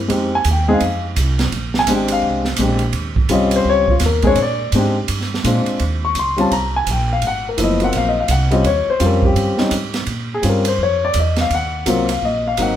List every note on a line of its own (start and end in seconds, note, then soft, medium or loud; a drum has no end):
0.08 0.44 F2 medium
0.08 0.29 G#3 medium
0.08 0.30 C4 medium
0.08 0.30 D#4 medium
0.08 0.30 G4 medium
0.08 kick soft
0.08 ride medium
0.35 0.47 G#5 medium
0.44 0.80 D#2 medium
0.44 kick soft
0.44 hi-hat pedal medium
0.44 ride medium
0.51 0.70 G5 medium
0.68 0.80 G#3 medium
0.68 0.80 C4 medium
0.68 0.80 D#4 medium
0.68 0.80 G#4 medium
0.73 1.04 F5 medium
0.80 1.16 F2 medium
0.80 kick soft
0.80 ride medium
1.16 1.51 C2 medium
1.16 kick soft
1.16 hi-hat pedal medium
1.16 ride medium
1.39 snare medium
1.39 ride soft
1.52 1.87 A#1 medium
1.52 kick soft
1.52 ride medium
1.74 snare medium
1.79 1.90 G#5 loud
1.87 2.22 G#1 medium
1.87 2.42 G#3 medium
1.87 2.42 C4 medium
1.87 2.42 D4 medium
1.87 2.42 G4 medium
1.87 kick soft
1.87 hi-hat pedal medium
1.87 ride medium
1.92 2.12 G5 medium
2.08 ride medium
2.12 2.45 F5 medium
2.22 2.58 C2 medium
2.22 kick soft
2.45 snare soft
2.56 2.93 A#1 medium
2.56 2.79 G#3 medium
2.56 2.80 C4 medium
2.56 2.80 D4 medium
2.56 kick soft
2.56 hi-hat pedal medium
2.56 ride medium
2.61 2.80 G4 medium
2.79 ride soft
2.93 3.29 D#2 medium
2.93 kick soft
2.93 ride medium
3.16 kick medium
3.29 3.64 C2 medium
3.29 3.84 G3 medium
3.29 3.84 C4 medium
3.29 3.84 C#4 medium
3.29 3.84 F4 medium
3.29 kick soft
3.29 hi-hat pedal soft
3.29 ride medium
3.33 3.54 D#5 medium
3.51 ride medium
3.56 3.68 C5 medium
3.65 4.00 C#2 medium
3.65 kick soft
3.70 3.90 C#5 loud
3.88 4.03 F4 medium
3.88 kick medium
4.00 4.36 D#2 medium
4.00 kick soft
4.00 snare soft
4.00 hi-hat pedal medium
4.00 ride medium
4.06 4.26 A#4 medium
4.22 4.36 G#3 medium
4.22 4.36 C4 medium
4.22 4.36 D4 medium
4.22 4.36 G#4 medium
4.22 kick medium
4.22 ride soft
4.27 4.39 C#5 medium
4.35 4.72 A#2 medium
4.35 kick soft
4.35 ride medium
4.42 4.73 D5 medium
4.72 5.08 G#2 medium
4.72 4.95 G#3 medium
4.72 4.94 C4 medium
4.72 4.95 D4 medium
4.72 4.95 G4 medium
4.72 kick soft
4.72 hi-hat pedal soft
4.72 ride medium
5.08 5.44 G2 medium
5.08 kick soft
5.08 ride medium
5.21 snare soft
5.34 snare soft
5.44 5.65 A#2 loud
5.44 5.80 G#3 medium
5.44 5.81 C4 medium
5.44 5.81 D4 medium
5.44 5.81 F4 medium
5.44 kick soft
5.44 hi-hat pedal medium
5.44 ride medium
5.66 muted upright bass stroke soft
5.66 ride soft
5.79 6.14 D#2 medium
5.79 kick soft
5.79 ride medium
6.05 6.17 C#6 medium
6.15 6.50 C#2 medium
6.15 kick soft
6.15 hi-hat pedal soft
6.15 ride medium
6.19 6.39 C6 medium
6.37 6.49 G3 medium
6.37 6.50 C4 medium
6.37 6.50 C#4 medium
6.37 6.50 F4 medium
6.37 6.52 A5 medium
6.37 ride soft
6.51 6.86 C2 medium
6.51 6.74 A#5 medium
6.51 kick soft
6.51 ride medium
6.76 6.88 G#5 medium
6.87 7.21 A#1 medium
6.87 kick soft
6.87 hi-hat pedal soft
6.87 ride medium
6.91 7.11 G5 medium
7.13 7.24 F5 medium
7.22 7.57 G#1 medium
7.22 kick soft
7.22 ride medium
7.27 7.47 F#5 loud
7.49 7.60 A#4 medium
7.57 7.93 F#1 medium
7.57 7.78 F3 medium
7.57 7.78 A3 medium
7.57 7.79 B3 medium
7.57 7.79 E4 medium
7.57 kick soft
7.57 hi-hat pedal medium
7.57 ride medium
7.64 7.83 D#5 medium
7.80 8.12 F#3 medium
7.80 8.12 A#3 medium
7.80 8.12 C4 medium
7.80 8.13 F4 medium
7.80 ride soft
7.84 7.96 F#5 medium
7.93 8.28 A#1 medium
7.93 kick soft
7.93 ride medium
7.97 8.07 F5 medium
8.09 8.19 D#5 medium
8.20 8.31 F5 medium
8.28 8.64 C2 medium
8.28 8.52 F#5 medium
8.28 kick soft
8.28 hi-hat pedal medium
8.28 ride medium
8.51 8.63 G3 medium
8.51 8.64 C4 medium
8.51 8.64 C#4 medium
8.51 8.65 F4 medium
8.51 8.65 D#5 medium
8.51 ride soft
8.64 8.86 D#2 medium
8.64 8.88 C#5 medium
8.64 kick soft
8.64 ride medium
8.88 9.02 C5 medium
8.88 muted upright bass stroke soft
9.00 9.35 F2 medium
9.00 9.54 G3 medium
9.00 9.54 C4 medium
9.00 9.54 C#4 medium
9.00 9.55 F4 medium
9.00 kick soft
9.00 hi-hat pedal medium
9.00 ride medium
9.06 9.25 A#4 medium
9.22 9.70 G4 medium
9.22 kick medium
9.36 9.57 G2 medium
9.36 kick soft
9.36 ride medium
9.58 9.71 G3 medium
9.58 9.71 C4 medium
9.58 9.71 C#4 medium
9.58 9.71 D#4 medium
9.58 muted upright bass stroke soft
9.58 snare medium
9.71 10.06 G#2 medium
9.71 kick soft
9.71 hi-hat pedal medium
9.71 ride medium
9.94 snare soft
9.94 ride soft
10.06 10.42 A#2 medium
10.06 kick soft
10.06 ride medium
10.34 10.46 G#4 medium
10.42 10.78 G2 medium
10.42 10.63 G3 medium
10.42 10.63 C4 medium
10.42 10.64 C#4 medium
10.42 10.64 F4 medium
10.42 kick soft
10.42 hi-hat pedal soft
10.42 ride medium
10.49 10.69 A#4 medium
10.65 10.80 C5 medium
10.65 ride medium
10.78 11.14 F2 medium
10.78 kick soft
10.83 11.03 C#5 medium
11.05 11.16 D5 medium
11.14 11.50 E2 medium
11.14 kick soft
11.14 hi-hat pedal medium
11.14 ride medium
11.36 snare soft
11.36 ride soft
11.41 11.52 F5 medium
11.50 11.85 D#2 medium
11.50 kick soft
11.50 ride medium
11.55 12.07 F#5 medium
11.86 12.21 C2 medium
11.86 12.07 F#3 medium
11.86 12.07 A#3 medium
11.86 12.07 C4 medium
11.86 12.07 F4 medium
11.86 kick soft
11.86 hi-hat pedal medium
11.86 ride medium
12.09 12.23 F5 medium
12.09 ride medium
12.22 12.57 A#1 medium
12.22 12.46 D#5 medium
12.22 kick soft
12.47 12.59 F5 medium
12.57 12.76 G#1 medium
12.57 12.76 F#3 medium
12.57 12.76 A#3 medium
12.57 12.76 C4 medium
12.57 12.76 D#4 medium
12.57 kick soft
12.57 hi-hat pedal medium
12.57 ride medium
12.62 12.76 F#5 medium